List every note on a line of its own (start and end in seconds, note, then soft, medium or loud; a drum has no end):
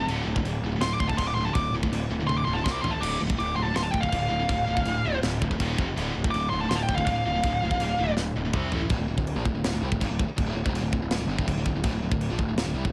0.01 0.09 F2 medium
0.07 0.21 D1 loud
0.07 0.25 D2 loud
0.07 0.26 A2 loud
0.07 0.26 D3 loud
0.07 china medium
0.25 0.39 D1 medium
0.25 0.35 D2 medium
0.25 0.35 A2 medium
0.36 0.44 D2 medium
0.36 0.44 A2 medium
0.36 kick loud
0.43 0.57 D1 medium
0.43 0.61 D2 medium
0.43 0.61 A2 medium
0.43 china medium
0.62 0.76 D1 medium
0.62 0.71 D2 medium
0.62 0.71 A2 medium
0.72 0.79 D2 medium
0.72 0.79 A2 medium
0.76 0.94 D1 medium
0.76 0.83 A2 medium
0.80 0.97 D2 medium
0.80 0.97 A2 medium
0.80 0.93 C6 loud
0.80 snare loud
0.80 china medium
0.85 1.00 A2 medium
0.93 1.00 D6 loud
0.98 1.14 D1 medium
0.98 1.07 D2 medium
0.98 1.07 A2 medium
0.98 1.09 C6 loud
0.98 kick medium
1.08 1.16 D2 medium
1.08 1.17 A2 medium
1.08 1.18 A5 medium
1.08 kick medium
1.13 1.20 D2 medium
1.13 1.20 A2 medium
1.17 1.32 D1 loud
1.17 1.34 D2 medium
1.17 1.35 A2 loud
1.17 1.27 C6 medium
1.17 kick medium
1.17 china medium
1.27 1.34 D6 loud
1.34 1.49 D1 medium
1.34 1.46 D2 medium
1.34 1.45 A2 medium
1.34 1.45 C6 loud
1.45 1.54 D2 medium
1.45 1.55 A2 medium
1.45 1.54 A5 loud
1.54 1.69 D1 loud
1.54 1.72 D2 medium
1.54 1.72 A2 medium
1.54 1.72 D6 loud
1.54 kick loud
1.54 china medium
1.71 1.85 D1 medium
1.71 1.82 D2 medium
1.71 1.82 A2 medium
1.83 1.90 D2 medium
1.83 1.91 A2 medium
1.83 kick loud
1.90 2.04 D1 medium
1.90 2.08 D2 medium
1.90 2.09 A2 medium
1.90 china medium
2.09 2.23 D1 medium
2.09 2.19 D2 medium
2.09 2.19 A2 medium
2.20 2.27 D2 medium
2.20 2.27 A2 medium
2.27 2.41 D1 medium
2.27 2.45 D2 medium
2.27 2.45 A2 medium
2.27 2.37 C6 loud
2.27 high tom medium
2.38 2.45 D6 medium
2.45 2.61 D1 medium
2.45 2.55 D2 medium
2.45 2.54 A2 medium
2.45 2.55 C6 loud
2.53 2.64 D2 medium
2.53 2.64 A2 medium
2.53 2.64 A5 loud
2.64 2.79 C2 medium
2.64 2.82 C3 medium
2.64 2.82 G3 loud
2.64 2.83 C4 loud
2.64 2.71 C6 loud
2.64 kick medium
2.64 snare loud
2.72 2.82 D6 loud
2.82 2.97 A1 medium
2.82 2.92 A2 medium
2.82 2.92 E3 medium
2.82 2.92 A3 loud
2.82 2.92 C6 medium
2.82 floor tom medium
2.91 3.00 A2 medium
2.91 3.02 E3 medium
2.91 3.01 A5 loud
3.01 3.16 D1 loud
3.01 3.19 D2 medium
3.01 3.19 A2 medium
3.01 3.19 D3 medium
3.01 3.19 D6 loud
3.01 china medium
3.01 crash loud
3.20 3.34 D1 medium
3.20 3.28 D2 medium
3.20 3.27 A2 medium
3.28 3.36 D2 medium
3.28 3.36 A2 medium
3.28 kick loud
3.37 3.53 D1 medium
3.37 3.54 D2 medium
3.37 3.55 A2 medium
3.37 3.56 D6 loud
3.37 china medium
3.56 3.71 D1 medium
3.56 3.65 D2 medium
3.56 3.64 A2 medium
3.56 3.63 C6 medium
3.63 3.73 D2 medium
3.63 3.74 A2 medium
3.63 3.76 A5 medium
3.74 3.89 D1 medium
3.74 3.92 D2 medium
3.74 3.91 A2 medium
3.74 3.84 C6 loud
3.74 snare loud
3.74 china medium
3.83 3.91 A5 loud
3.91 4.07 D1 medium
3.91 4.02 D2 medium
3.91 4.01 A2 loud
3.91 4.01 G5 medium
3.91 kick medium
4.01 4.11 D2 medium
4.01 4.11 A2 medium
4.01 4.08 F5 medium
4.01 kick medium
4.09 4.26 D1 medium
4.09 4.29 D2 medium
4.09 4.29 A2 medium
4.09 5.18 F5 loud
4.09 kick medium
4.09 china medium
4.30 4.44 D1 loud
4.30 4.39 D2 medium
4.30 4.39 A2 medium
4.40 4.48 D2 medium
4.40 4.49 A2 medium
4.49 4.63 D1 loud
4.49 4.66 D2 medium
4.49 4.66 A2 medium
4.49 kick loud
4.49 china medium
4.67 4.82 D1 medium
4.67 4.76 D2 medium
4.67 4.76 A2 medium
4.77 4.84 D2 medium
4.77 4.85 A2 medium
4.77 kick medium
4.85 4.99 D1 medium
4.85 5.02 D2 medium
4.85 5.03 A2 medium
4.85 china medium
5.05 5.18 D1 medium
5.05 5.12 D2 medium
5.05 5.11 A2 medium
5.12 5.21 D2 medium
5.12 5.21 A2 medium
5.22 5.37 D1 medium
5.22 5.39 D2 medium
5.22 5.39 A2 medium
5.22 snare loud
5.22 china medium
5.41 5.55 D1 medium
5.41 5.51 D2 medium
5.41 5.50 A2 medium
5.41 kick medium
5.51 5.59 D2 medium
5.51 5.60 A2 medium
5.51 kick medium
5.60 5.73 D#1 loud
5.60 5.77 D#2 loud
5.60 5.77 A#2 loud
5.60 5.77 D#3 loud
5.60 kick loud
5.60 china medium
5.78 5.92 F1 medium
5.78 5.86 F2 medium
5.78 5.86 C3 medium
5.78 5.87 F3 loud
5.78 kick loud
5.88 5.96 F2 medium
5.88 5.97 C3 medium
5.97 6.10 D1 loud
5.97 6.14 D2 medium
5.97 6.14 A2 loud
5.97 6.14 D3 loud
5.97 china medium
6.15 6.29 D1 medium
6.15 6.24 D2 medium
6.15 6.23 A2 medium
6.24 6.33 D2 medium
6.24 6.33 A2 medium
6.24 kick medium
6.31 6.47 D1 loud
6.31 6.50 D2 medium
6.31 6.50 A2 medium
6.31 6.49 D6 loud
6.31 china medium
6.50 6.66 D1 medium
6.50 6.60 D2 medium
6.50 6.60 A2 medium
6.50 6.59 C6 loud
6.60 6.70 D2 medium
6.60 6.70 A2 medium
6.60 6.69 A5 loud
6.69 6.84 D1 medium
6.69 6.87 D2 medium
6.69 6.87 A2 medium
6.69 6.78 C6 loud
6.69 snare loud
6.69 china medium
6.75 6.83 A5 loud
6.83 6.94 G5 medium
6.89 7.02 D1 medium
6.89 6.98 D2 medium
6.89 6.97 A2 medium
6.89 kick medium
6.95 7.06 A2 medium
6.95 7.04 F5 medium
6.95 kick medium
6.99 7.06 D2 medium
7.06 7.20 D1 loud
7.06 7.23 D2 medium
7.06 7.23 A2 loud
7.06 8.13 F5 loud
7.06 kick loud
7.06 china medium
7.26 7.39 D1 medium
7.26 7.33 D2 medium
7.26 7.33 A2 medium
7.34 7.42 D2 medium
7.34 7.42 A2 medium
7.43 7.57 D1 loud
7.43 7.60 D2 medium
7.43 7.60 A2 medium
7.43 kick loud
7.43 china medium
7.62 7.75 D1 medium
7.62 7.70 D2 medium
7.62 7.69 A2 medium
7.71 7.78 D2 medium
7.71 7.79 A2 medium
7.71 kick medium
7.80 7.93 D1 medium
7.80 7.96 D2 medium
7.80 7.96 A2 medium
7.80 china medium
7.99 8.12 D1 loud
7.99 8.07 D2 medium
7.99 8.07 A2 medium
8.08 8.16 D2 medium
8.08 8.17 A2 medium
8.17 8.30 D1 medium
8.17 8.33 D2 medium
8.17 8.34 A2 medium
8.17 snare medium
8.36 8.49 D1 loud
8.36 8.44 D2 medium
8.36 8.44 A2 loud
8.45 8.54 D2 medium
8.45 8.54 A2 medium
8.53 8.67 C2 loud
8.53 8.71 C3 loud
8.53 8.71 G3 loud
8.53 8.72 C4 loud
8.53 kick medium
8.53 mid tom loud
8.72 8.85 A1 loud
8.72 8.80 A2 medium
8.72 8.81 E3 medium
8.72 8.81 A3 loud
8.72 floor tom medium
8.82 8.90 A2 medium
8.82 8.90 E3 medium
8.89 8.98 D1 loud
8.89 8.99 D2 medium
8.89 8.99 A2 loud
8.89 kick loud
8.89 china medium
8.99 9.07 D1 medium
8.99 9.07 D2 medium
8.99 9.07 A2 medium
9.08 9.17 D1 medium
9.08 9.16 D2 medium
9.08 9.16 A2 medium
9.17 9.35 D1 medium
9.17 9.32 D2 medium
9.17 9.32 A2 medium
9.17 kick medium
9.27 china medium
9.36 9.44 A#1 loud
9.36 9.44 A#2 loud
9.36 9.44 F3 loud
9.45 9.54 D1 medium
9.45 9.53 D2 medium
9.45 9.54 A2 medium
9.45 kick medium
9.54 9.63 D1 medium
9.54 9.63 D2 medium
9.54 9.63 A2 medium
9.64 9.72 D1 medium
9.64 9.72 D2 medium
9.64 9.72 A2 medium
9.64 snare loud
9.64 china medium
9.73 9.81 D1 medium
9.73 9.82 D2 medium
9.73 9.82 A2 medium
9.82 9.90 C2 loud
9.82 9.91 C3 loud
9.82 9.91 G3 loud
9.91 10.00 D1 medium
9.91 10.00 D2 medium
9.91 10.00 A2 medium
9.91 kick medium
10.00 10.08 G#1 loud
10.00 10.09 G#2 medium
10.00 10.09 D#3 loud
10.00 kick medium
10.00 china medium
10.09 10.17 D1 medium
10.09 10.18 D2 medium
10.09 10.18 A2 medium
10.19 10.27 D1 medium
10.19 10.27 D2 medium
10.19 10.28 A2 medium
10.19 kick medium
10.27 muted picked electric bass stroke soft
10.27 muted distorted electric guitar stroke medium
10.37 10.45 D1 loud
10.37 10.45 D2 medium
10.37 10.46 A2 medium
10.37 kick loud
10.37 china medium
10.46 10.54 D1 loud
10.46 10.55 D2 loud
10.46 10.55 A2 loud
10.54 10.63 D1 medium
10.54 10.64 D2 medium
10.54 10.64 A2 medium
10.64 10.71 F1 loud
10.64 10.73 F2 loud
10.64 10.73 C3 loud
10.64 kick loud
10.72 10.81 D#1 medium
10.72 10.82 D#2 medium
10.72 10.82 A#2 loud
10.72 china medium
10.81 10.90 D1 medium
10.81 10.91 D2 medium
10.81 10.91 A2 medium
10.92 11.01 D1 medium
10.92 11.01 D2 medium
10.92 11.01 A2 medium
10.92 kick medium
11.02 11.09 D1 medium
11.02 11.10 D2 medium
11.02 11.11 A2 medium
11.10 11.19 D1 medium
11.10 11.19 D2 medium
11.10 11.19 A2 medium
11.10 snare loud
11.10 china medium
11.19 11.26 D1 medium
11.19 11.29 D2 medium
11.19 11.29 A2 medium
11.27 11.36 G1 loud
11.27 11.37 G2 loud
11.27 11.38 D3 loud
11.38 11.47 D1 medium
11.38 11.46 D2 loud
11.38 11.46 A2 loud
11.38 kick medium
11.47 11.55 D1 medium
11.47 11.56 D2 medium
11.47 11.56 A2 medium
11.47 kick medium
11.47 china medium
11.55 11.64 D1 medium
11.55 11.66 D2 medium
11.55 11.66 A2 medium
11.66 11.74 D1 medium
11.66 11.74 D2 medium
11.66 11.75 A2 medium
11.66 kick medium
11.74 11.83 D1 medium
11.74 11.83 D2 medium
11.74 11.84 A2 medium
11.84 11.92 D1 loud
11.84 11.92 D2 loud
11.84 11.93 A2 loud
11.84 kick loud
11.84 china medium
11.92 12.01 D1 medium
11.92 12.01 D2 medium
11.92 12.01 A2 medium
12.02 12.11 D1 medium
12.02 12.11 D2 medium
12.02 12.11 A2 medium
12.11 12.28 D1 medium
12.11 12.26 D2 medium
12.11 12.26 A2 medium
12.11 kick medium
12.21 china medium
12.30 12.38 A#1 medium
12.30 12.38 A#2 loud
12.30 12.39 F3 loud
12.39 12.47 D1 medium
12.39 12.47 D2 medium
12.39 12.48 A2 medium
12.39 kick medium
12.48 12.55 D1 medium
12.48 12.57 D2 medium
12.48 12.57 A2 medium
12.56 12.65 D1 medium
12.56 12.65 D2 medium
12.56 12.66 A2 medium
12.56 snare loud
12.56 china medium
12.66 12.74 D1 medium
12.66 12.75 D2 medium
12.66 12.75 A2 medium
12.74 12.83 C2 medium
12.74 12.84 C3 medium
12.74 12.84 G3 loud
12.85 12.92 D1 medium
12.85 12.92 D2 medium
12.85 12.92 A2 medium
12.85 kick medium